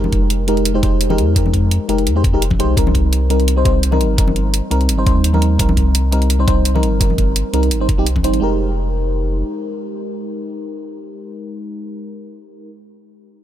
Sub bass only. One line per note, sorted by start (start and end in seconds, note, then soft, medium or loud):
0.00 1.20 F1 loud
1.18 1.79 F2 loud
1.89 2.08 F1 loud
2.06 2.35 F2 medium
2.34 2.61 F1 loud
2.59 2.75 C2 loud
2.77 4.02 C2 loud
4.01 4.61 G1 loud
4.71 4.90 C2 loud
4.89 5.08 G1 medium
5.06 5.58 D#2 loud
5.59 6.84 C2 loud
6.83 7.44 G1 loud
7.53 7.73 C2 loud
7.71 8.00 G1 medium
7.98 8.25 C2 loud
8.24 8.40 G1 medium
8.42 9.44 F1 medium